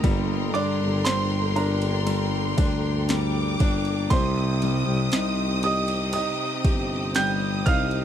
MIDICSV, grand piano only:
0, 0, Header, 1, 2, 480
1, 0, Start_track
1, 0, Key_signature, -3, "minor"
1, 0, Tempo, 1016949
1, 18, Time_signature, 4, 2, 24, 8
1, 3797, End_track
2, 0, Start_track
2, 0, Title_t, "Grand piano"
2, 0, Program_c, 0, 0
2, 0, Note_on_c, 0, 75, 88
2, 0, Note_on_c, 0, 87, 105
2, 239, Note_off_c, 0, 87, 0
2, 242, Note_off_c, 0, 75, 0
2, 254, Note_on_c, 0, 86, 102
2, 261, Note_on_c, 0, 74, 72
2, 479, Note_off_c, 0, 86, 0
2, 483, Note_off_c, 0, 74, 0
2, 494, Note_on_c, 0, 84, 109
2, 501, Note_on_c, 0, 72, 69
2, 723, Note_off_c, 0, 72, 0
2, 735, Note_on_c, 0, 82, 78
2, 743, Note_off_c, 0, 84, 0
2, 744, Note_on_c, 0, 70, 60
2, 1678, Note_off_c, 0, 82, 0
2, 1682, Note_off_c, 0, 70, 0
2, 1937, Note_on_c, 0, 84, 105
2, 1947, Note_on_c, 0, 72, 70
2, 2644, Note_off_c, 0, 72, 0
2, 2661, Note_on_c, 0, 87, 99
2, 2670, Note_on_c, 0, 75, 74
2, 2679, Note_off_c, 0, 84, 0
2, 2888, Note_off_c, 0, 75, 0
2, 2888, Note_off_c, 0, 87, 0
2, 2896, Note_on_c, 0, 87, 111
2, 2905, Note_on_c, 0, 75, 77
2, 3363, Note_off_c, 0, 75, 0
2, 3378, Note_on_c, 0, 91, 115
2, 3387, Note_on_c, 0, 79, 87
2, 3391, Note_off_c, 0, 87, 0
2, 3432, Note_off_c, 0, 91, 0
2, 3440, Note_off_c, 0, 79, 0
2, 3615, Note_on_c, 0, 89, 118
2, 3626, Note_on_c, 0, 77, 84
2, 3797, Note_off_c, 0, 77, 0
2, 3797, Note_off_c, 0, 89, 0
2, 3797, End_track
0, 0, End_of_file